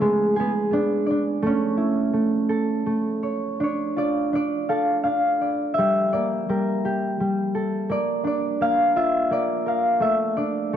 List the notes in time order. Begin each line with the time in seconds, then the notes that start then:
Already playing: C#4 E4 C#5
0.01 G#3 B3
0.36 B3 G#4
0.71 B3 D4
1.06 D5
1.11 D4
1.42 A3
1.46 C#4
1.77 E4
2.13 A3
2.49 A4
2.86 A3
3.23 C#5
3.60 D4 C#5
3.96 F4 D5
4.33 D4 D5
4.69 A4 F5
5.04 D4 F5
5.41 D5
5.74 E5
5.78 G3
6.13 A#3 D5
6.49 G3 A#4
6.85 G4
7.20 G3
7.55 A4
7.89 A#3 D5
8.24 D4 D5
8.61 A#3 F5
8.96 F4 E5
9.31 A#3 D5
9.66 A#4 F5
10.00 A3 E5
10.37 D4 D5
10.73 A3